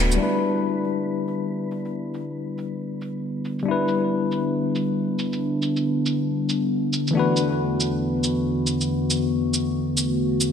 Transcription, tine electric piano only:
0.00 0.16 A3 medium
0.00 0.17 D4 medium
0.00 0.19 F#4 medium
0.00 0.20 B4 medium
0.15 3.62 G3 medium
0.15 3.65 D4 medium
0.20 3.66 E4 medium
0.20 3.67 B4 medium
3.63 7.11 G3 medium
3.63 7.12 D4 medium
3.68 7.14 E4 medium
3.68 7.15 B4 medium
7.11 10.52 E3 medium
7.11 10.52 A3 medium
7.15 10.52 D4 medium
7.15 10.52 F#4 medium
7.19 10.52 B4 medium

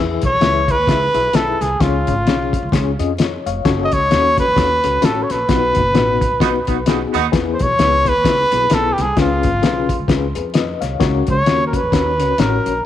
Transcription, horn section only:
6.40 6.49 B3 medium
6.40 6.49 D#4 medium
6.40 6.49 F#4 medium
6.67 6.75 B3 medium
6.67 6.76 D#4 medium
6.67 6.76 F#4 medium
6.86 6.98 B3 medium
6.86 6.98 D#4 medium
6.86 6.98 F#4 medium
7.13 7.25 B3 medium
7.13 7.25 D#4 medium
7.13 7.25 F#4 medium

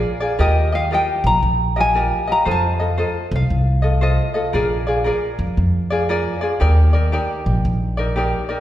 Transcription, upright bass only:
0.39 0.94 D#2 medium
1.24 1.36 A#1 loud
1.43 2.10 A#1 medium
2.46 3.02 F2 medium
3.31 3.44 C2 loud
3.50 4.18 C2 medium
4.54 5.09 A#1 medium
5.39 5.51 F2 medium
5.57 6.25 F2 medium
6.61 7.16 D#2 medium
7.46 7.58 A#1 medium
7.65 8.32 A#1 medium

